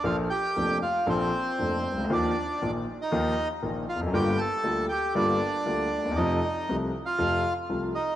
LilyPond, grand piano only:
\new Staff \with { instrumentName = "Grand piano" } { \clef bass \time 4/4 \key bes \major \tempo 4 = 118 <bes,, bes, f bes d' a'>8 r8 <f,, f, f bes d' a'>8 r8 <bes,, bes, f bes d' a'>8 r8 <f,, f, f bes d' a'>8 r32 c,32 des,32 d,32 | <ees, ees f bes f'>8 r8 <bes,, bes, ees f bes f'>8 r8 <ees, ees f bes f'>8 r8 <bes,, bes, ees f bes f'>8 r32 e,32 f,32 ges,32 | <g,, g, d g bes f'>8 r8 <d, d g bes f'>8 r8 <g,, g, d g bes f'>8 r8 <d, d g bes f'>8 r32 d,32 ees,32 e,32 | <f, c f a f'>8 r8 <c, c f a f'>8 r8 <f, c f a f'>8 r8 <c, c f a f'>8 r8 | }